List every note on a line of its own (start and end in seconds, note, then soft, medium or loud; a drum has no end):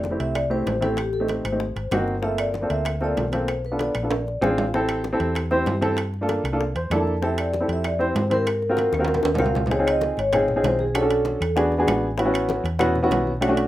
0.00 0.16 F1 medium
0.00 0.21 D5 medium
0.00 high conga medium
0.05 high bongo medium
0.05 low timbale medium
0.11 0.39 A3 medium
0.11 0.39 C4 medium
0.11 0.39 E4 medium
0.11 0.39 G4 medium
0.20 0.63 C2 medium
0.20 0.36 E5 medium
0.20 high conga soft
0.20 high timbale medium
0.35 0.50 D5 medium
0.35 high bongo medium
0.35 high conga soft
0.35 high timbale medium
0.35 claves medium
0.50 0.72 A3 medium
0.50 0.73 C4 medium
0.50 0.73 E4 medium
0.50 0.73 G4 medium
0.50 0.83 C5 medium
0.50 high bongo soft
0.50 high conga soft
0.66 1.39 A1 medium
0.66 high bongo soft
0.66 low bongo medium
0.66 high conga medium
0.66 high timbale medium
0.66 low timbale medium
0.81 0.97 A3 medium
0.81 0.98 C4 medium
0.81 0.97 E4 medium
0.81 0.98 G4 medium
0.81 0.97 A4 medium
0.81 high bongo soft
0.81 high conga medium
0.81 high timbale medium
0.97 1.13 G4 medium
0.97 high bongo medium
0.97 high conga soft
0.97 high timbale medium
0.97 claves medium
1.13 1.28 A4 medium
1.13 high bongo soft
1.13 high conga soft
1.20 1.43 A3 medium
1.20 1.43 C4 medium
1.20 1.43 D#4 medium
1.20 1.43 G4 medium
1.28 1.88 C5 medium
1.28 high bongo medium
1.28 high conga medium
1.28 high timbale medium
1.28 low timbale medium
1.45 1.74 G#1 medium
1.45 high timbale medium
1.45 claves medium
1.52 1.60 A3 medium
1.52 1.60 C4 medium
1.52 1.61 D#4 medium
1.52 1.60 G4 medium
1.60 high bongo medium
1.60 high conga soft
1.76 1.90 G#1 medium
1.76 high bongo soft
1.76 high conga soft
1.76 high timbale medium
1.91 2.64 G1 medium
1.91 2.14 A#3 medium
1.91 2.14 C4 medium
1.91 2.14 D#4 medium
1.91 2.14 F#4 medium
1.91 high bongo soft
1.91 low bongo medium
1.91 high conga medium
1.91 high timbale medium
1.91 low timbale medium
1.91 claves medium
2.08 high bongo soft
2.08 high conga soft
2.22 2.50 A#3 medium
2.22 2.50 C4 medium
2.22 2.50 F4 medium
2.22 2.50 A4 medium
2.22 2.31 E5 medium
2.22 high bongo medium
2.22 high conga soft
2.38 2.68 D5 medium
2.38 high bongo soft
2.38 high conga soft
2.38 high timbale medium
2.38 claves medium
2.54 high bongo soft
2.54 high conga medium
2.54 low timbale medium
2.61 2.89 A#3 medium
2.61 2.90 C4 medium
2.61 2.90 F4 medium
2.61 2.90 A4 medium
2.70 3.13 D2 medium
2.70 3.02 E5 medium
2.70 high conga soft
2.70 high timbale medium
2.85 high bongo medium
2.85 high conga soft
2.85 high timbale medium
2.85 claves medium
3.00 3.23 A#3 medium
3.00 3.23 C4 medium
3.00 3.23 F4 medium
3.00 3.23 A4 medium
3.00 3.35 D5 medium
3.00 high bongo soft
3.00 high conga soft
3.17 3.89 B1 medium
3.17 high bongo soft
3.17 low bongo medium
3.17 high conga medium
3.17 high timbale medium
3.17 low timbale medium
3.32 3.48 A#3 medium
3.32 3.48 C4 medium
3.32 3.49 F4 medium
3.32 3.48 A4 medium
3.32 3.62 C5 medium
3.32 high bongo soft
3.32 high conga medium
3.32 high timbale medium
3.48 high bongo medium
3.48 high conga soft
3.48 high timbale medium
3.48 claves medium
3.65 3.81 B4 medium
3.65 high bongo soft
3.65 high conga soft
3.72 3.93 B3 medium
3.72 3.93 D4 medium
3.72 3.93 F4 medium
3.72 3.94 A4 medium
3.79 4.39 D5 medium
3.79 high bongo medium
3.79 high conga medium
3.79 high timbale medium
3.79 low timbale medium
3.95 4.39 A#1 medium
3.95 high timbale medium
3.95 claves medium
4.03 4.11 B3 medium
4.03 4.11 D4 medium
4.03 4.11 F4 medium
4.03 4.11 A4 medium
4.11 high bongo medium
4.11 high conga soft
4.11 high timbale loud
4.27 high bongo soft
4.27 high conga soft
4.41 5.14 A1 medium
4.41 4.63 C4 medium
4.41 4.64 D4 medium
4.41 4.64 F4 medium
4.41 4.64 G#4 medium
4.41 4.56 G#5 medium
4.41 high bongo soft
4.41 low bongo medium
4.41 high conga medium
4.41 low timbale medium
4.41 claves medium
4.58 4.72 F5 medium
4.58 high bongo soft
4.58 low timbale medium
4.73 5.01 C4 medium
4.73 5.01 E4 medium
4.73 5.01 G4 medium
4.73 5.01 A4 loud
4.73 high bongo medium
4.73 high conga soft
4.89 high bongo soft
4.89 high conga soft
4.89 high timbale medium
4.89 claves medium
5.04 high bongo medium
5.04 high conga medium
5.04 low timbale medium
5.13 5.40 C4 medium
5.13 5.40 E4 medium
5.13 5.40 G4 medium
5.13 5.40 A4 medium
5.20 5.63 E2 medium
5.20 high timbale medium
5.35 high bongo medium
5.35 high timbale medium
5.35 claves medium
5.51 5.73 C4 medium
5.51 5.73 E4 medium
5.51 5.73 G4 medium
5.51 5.73 C5 loud
5.51 high bongo soft
5.51 high conga soft
5.66 6.39 G2 medium
5.66 high bongo soft
5.66 low bongo medium
5.66 high conga medium
5.66 high timbale medium
5.66 low timbale medium
5.81 5.97 C4 medium
5.81 5.97 E4 medium
5.81 5.98 G4 medium
5.81 5.98 A4 loud
5.81 high bongo soft
5.81 high conga medium
5.81 high timbale medium
5.97 high bongo medium
5.97 high conga soft
5.97 high timbale medium
5.97 claves medium
6.14 high bongo soft
6.14 high conga soft
6.21 6.43 A#3 medium
6.21 6.43 D4 medium
6.21 6.43 F4 medium
6.21 6.44 A4 medium
6.29 high bongo medium
6.29 high conga medium
6.29 high timbale medium
6.29 low timbale medium
6.44 6.73 C2 medium
6.44 high timbale medium
6.44 claves medium
6.52 6.60 A#3 medium
6.52 6.60 D4 medium
6.52 6.60 F4 medium
6.52 6.60 A4 medium
6.61 high bongo medium
6.75 6.90 E2 medium
6.75 6.90 C5 medium
6.75 high bongo soft
6.75 high conga soft
6.75 high timbale medium
6.90 7.63 F2 medium
6.90 7.13 A#3 medium
6.90 7.13 D4 medium
6.90 7.14 E4 medium
6.90 7.13 A4 medium
6.90 6.99 D5 medium
6.90 high bongo soft
6.90 low bongo medium
6.90 high conga medium
6.90 high timbale medium
6.90 low timbale medium
6.90 claves medium
7.00 7.21 A5 medium
7.06 high bongo soft
7.06 high conga soft
7.22 7.49 C4 medium
7.22 7.50 E4 medium
7.22 7.50 G4 medium
7.22 7.50 A4 medium
7.22 7.40 E5 medium
7.22 high bongo medium
7.22 high conga soft
7.38 7.71 D5 medium
7.38 high bongo soft
7.38 high conga soft
7.38 high timbale medium
7.38 claves medium
7.53 high bongo medium
7.53 high conga medium
7.53 low timbale soft
7.61 7.88 C4 medium
7.61 7.88 E4 medium
7.61 7.89 G4 medium
7.61 7.89 A4 medium
7.68 8.12 F2 medium
7.68 high conga soft
7.68 high timbale medium
7.73 7.87 E5 medium
7.84 8.02 D5 medium
7.84 high bongo medium
7.84 high conga soft
7.84 high timbale medium
7.84 claves medium
7.99 8.21 C4 medium
7.99 8.22 E4 medium
7.99 8.22 G4 medium
7.99 8.22 C5 medium
7.99 8.33 C5 medium
7.99 high bongo soft
7.99 high conga soft
8.15 8.87 G#2 medium
8.15 high bongo soft
8.15 low bongo medium
8.15 high conga medium
8.15 high timbale medium
8.15 low timbale medium
8.30 8.46 C4 medium
8.30 8.46 E4 medium
8.30 8.46 G4 medium
8.30 9.37 A#4 medium
8.30 8.47 C5 medium
8.30 high bongo soft
8.30 high conga medium
8.30 high timbale medium
8.47 high bongo medium
8.47 high conga soft
8.47 high timbale medium
8.47 claves medium
8.62 high bongo soft
8.62 high conga soft
8.69 8.91 C4 medium
8.69 8.91 F4 medium
8.69 8.92 F#4 medium
8.69 8.92 A#4 medium
8.77 high bongo medium
8.77 high conga medium
8.77 high timbale medium
8.77 low timbale medium
8.92 9.22 D#2 medium
8.92 high bongo medium
8.92 high conga medium
8.92 high timbale medium
8.92 claves medium
8.99 9.27 C4 medium
8.99 9.27 F4 medium
8.99 9.28 F#4 medium
8.99 9.28 A#4 medium
9.05 low bongo medium
9.05 high timbale medium
9.14 low conga medium
9.14 high timbale medium
9.23 9.38 D#2 medium
9.23 low bongo medium
9.23 high timbale medium
9.34 9.61 C4 medium
9.34 low conga medium
9.34 low timbale medium
9.39 10.12 C#2 medium
9.39 9.61 F4 medium
9.39 9.61 F#4 medium
9.39 9.61 A#4 medium
9.39 9.70 F5 medium
9.39 low bongo medium
9.39 claves medium
9.44 low conga medium
9.44 low timbale medium
9.55 low bongo medium
9.55 low conga medium
9.55 low timbale medium
9.66 low conga medium
9.66 low timbale medium
9.70 9.76 C4 medium
9.70 9.76 D#4 medium
9.70 9.76 F4 medium
9.70 9.77 G#4 medium
9.70 9.88 C#5 medium
9.70 high bongo medium
9.70 high conga soft
9.70 high timbale medium
9.79 10.17 C4 medium
9.79 10.17 D#4 medium
9.79 10.17 F4 medium
9.79 10.17 G#4 medium
9.86 10.17 D#5 medium
9.86 high bongo soft
9.86 high conga soft
9.86 high timbale medium
9.86 claves medium
10.01 high bongo medium
10.01 high conga medium
10.01 low timbale medium
10.17 10.60 G#1 medium
10.17 10.62 C#5 medium
10.17 high bongo soft
10.17 high conga soft
10.17 high timbale medium
10.33 10.49 C4 medium
10.33 10.49 D#4 medium
10.33 10.50 F4 medium
10.33 10.50 G#4 medium
10.33 high bongo medium
10.33 high conga soft
10.33 low conga medium
10.33 high timbale medium
10.33 claves medium
10.48 high bongo soft
10.48 high conga soft
10.48 low conga medium
10.56 10.83 C4 medium
10.56 10.83 D#4 medium
10.56 10.83 F4 medium
10.56 10.83 G#4 medium
10.63 11.35 B1 medium
10.63 10.80 C5 loud
10.63 high bongo soft
10.63 low bongo medium
10.63 high conga medium
10.63 high timbale medium
10.63 low timbale medium
10.79 10.96 G#4 medium
10.79 high conga medium
10.95 11.00 C#4 medium
10.95 11.00 D4 medium
10.95 11.00 F#4 medium
10.95 11.00 A4 medium
10.95 11.53 A4 medium
10.95 high bongo medium
10.95 high conga soft
10.95 high timbale loud
10.95 claves medium
11.01 11.40 C#4 medium
11.01 11.40 D4 medium
11.01 11.40 F#4 medium
11.01 11.40 A4 medium
11.10 high bongo soft
11.10 high conga soft
11.10 high timbale medium
11.25 high bongo medium
11.25 high conga medium
11.25 low timbale medium
11.41 11.84 E2 medium
11.41 high bongo soft
11.41 high conga soft
11.41 high timbale medium
11.41 claves medium
11.56 11.72 B3 medium
11.56 11.73 D4 medium
11.56 11.73 F#4 medium
11.56 11.73 G#4 loud
11.56 high bongo medium
11.56 high conga soft
11.56 high timbale medium
11.72 high bongo soft
11.72 high conga soft
11.78 12.06 B3 medium
11.78 12.06 D4 medium
11.78 12.07 F#4 medium
11.78 12.07 G#4 loud
11.87 12.59 A1 medium
11.87 high bongo soft
11.87 low bongo medium
11.87 high timbale medium
11.87 low timbale medium
11.87 claves medium
12.03 high conga soft
12.18 12.23 B3 medium
12.18 12.24 C#4 medium
12.18 12.24 E4 medium
12.18 12.24 F#4 medium
12.18 high bongo medium
12.18 high conga soft
12.18 high timbale medium
12.25 12.63 B3 medium
12.25 12.64 C#4 medium
12.25 12.64 E4 medium
12.25 12.64 F#4 medium
12.34 high bongo soft
12.34 high conga soft
12.34 high timbale medium
12.34 claves medium
12.49 high bongo medium
12.49 high conga medium
12.49 low timbale medium
12.64 13.07 E2 medium
12.64 high bongo soft
12.64 high conga soft
12.64 high timbale medium
12.79 12.96 B3 loud
12.79 12.96 C#4 medium
12.79 12.96 E4 medium
12.79 12.96 F#4 loud
12.79 high bongo medium
12.79 high conga soft
12.79 low conga medium
12.79 high timbale medium
12.79 claves medium
12.95 high bongo soft
12.95 high conga soft
12.95 low conga medium
13.03 13.30 B3 medium
13.03 13.30 C#4 medium
13.03 13.31 E4 medium
13.03 13.30 F#4 loud
13.10 13.68 B1 medium
13.10 high bongo soft
13.10 low bongo medium
13.10 high conga medium
13.10 high timbale medium
13.10 low timbale medium
13.27 high conga medium
13.41 13.46 A3 medium
13.41 13.47 C#4 medium
13.41 13.47 D4 medium
13.41 13.47 F#4 medium
13.41 high bongo medium
13.41 high timbale medium
13.41 claves medium
13.48 13.68 A3 medium
13.48 13.68 C#4 medium
13.48 13.68 D4 medium
13.48 13.68 F#4 loud
13.57 high bongo soft
13.57 high conga soft
13.57 high timbale medium